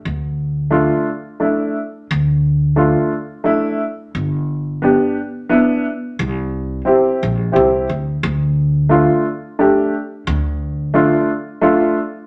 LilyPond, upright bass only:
\new Staff \with { instrumentName = "Upright bass" } { \clef bass \time 3/4 \key d \minor \tempo 4 = 88 d,2 r4 | d,2 r4 | g,,2 r4 | c,4. bes,,8 c,8 d,8 |
d,2 r4 | d,2 r4 | }